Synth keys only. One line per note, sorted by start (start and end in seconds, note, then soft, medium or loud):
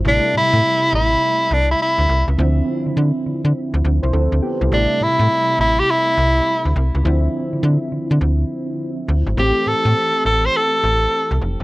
0.05 2.34 C3 medium
0.05 2.34 G3 medium
0.05 2.35 A3 medium
0.05 2.35 E4 medium
2.38 4.67 D3 medium
2.38 4.67 F3 medium
2.38 3.81 C4 medium
2.38 3.82 E4 medium
4.03 4.13 E4 soft
4.03 4.13 C5 medium
4.13 4.41 C4 medium
4.13 4.41 A4 medium
4.42 4.60 B3 medium
4.42 4.60 G4 medium
4.61 4.69 G3 soft
4.61 4.71 E4 medium
4.70 7.00 C3 medium
4.70 7.00 G3 medium
4.70 7.00 A3 medium
4.70 7.01 E4 medium
7.04 9.33 D3 medium
7.04 9.33 F3 medium
7.04 9.34 C4 medium
7.04 9.34 E4 medium
9.37 11.64 E3 medium
9.37 11.64 A3 medium
9.37 11.64 C4 medium
9.37 11.64 G4 medium